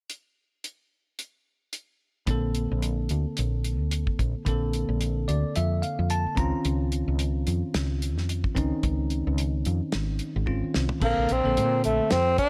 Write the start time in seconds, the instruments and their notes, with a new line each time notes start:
0.10 closed hi-hat
0.64 closed hi-hat
1.19 closed hi-hat
1.73 closed hi-hat
2.27 fretless electric bass A#1, tine electric piano D3 A#3 C4, kick, closed hi-hat
2.31 tine electric piano A4
2.55 closed hi-hat
2.71 fretless electric bass A#1
2.82 closed hi-hat
3.09 fretless electric bass D2, closed hi-hat
3.37 fretless electric bass A#1, closed hi-hat
3.64 closed hi-hat
3.80 fretless electric bass D2
3.91 closed hi-hat
4.07 kick
4.19 fretless electric bass A#1, kick, closed hi-hat
4.45 fretless electric bass A#1, tine electric piano D3 A#3 C4 A4, kick, closed hi-hat
4.73 closed hi-hat
4.89 fretless electric bass A#1
5.01 closed hi-hat
5.28 fretless electric bass D2, tine electric piano D5, closed hi-hat
5.56 fretless electric bass F2, tine electric piano E5, closed hi-hat
5.82 tine electric piano F5, closed hi-hat
5.99 fretless electric bass F2
6.10 tine electric piano A5, closed hi-hat
6.26 muted fretless electric bass stroke
6.35 fretless electric bass C#2, tine electric piano D#3 C4 C#4 A#5, kick, closed hi-hat
6.39 tine electric piano F4
6.65 fretless electric bass C#2, closed hi-hat
6.92 closed hi-hat
7.08 fretless electric bass C#2
7.19 closed hi-hat
7.47 fretless electric bass F2, closed hi-hat
7.74 fretless electric bass C#2, snare, closed hi-hat
8.02 closed hi-hat
8.17 fretless electric bass F2, snare
8.29 closed hi-hat
8.44 kick
8.55 fretless electric bass C#2, tine electric piano D#3 C4 C#4 D#4, kick, closed hi-hat
8.83 fretless electric bass C#2, kick, closed hi-hat
9.10 closed hi-hat
9.27 fretless electric bass C#2
9.38 closed hi-hat
9.65 fretless electric bass F2, closed hi-hat
9.92 fretless electric bass G#1, snare, closed hi-hat
10.19 closed hi-hat
10.36 fretless electric bass G#1
10.46 tine electric piano D#3 C4 C#4 F4, kick
10.64 muted fretless electric bass stroke
10.74 fretless electric bass C2, snare
10.89 floor tom
11.00 fretless electric bass A#1, tine electric piano D3 A#3 C4 A4, tenor saxophone A#3, kick, crash
11.18 fretless electric bass A#1
11.29 fretless electric bass A#1, tenor saxophone C4, closed hi-hat
11.43 fretless electric bass A#1, tine electric piano D3 A#3 C4 A4
11.57 fretless electric bass A#2, closed hi-hat
11.84 fretless electric bass A#1, tenor saxophone A3, closed hi-hat
12.11 fretless electric bass F2, tenor saxophone C4, snare, closed hi-hat
12.38 tenor saxophone D4, kick, closed hi-hat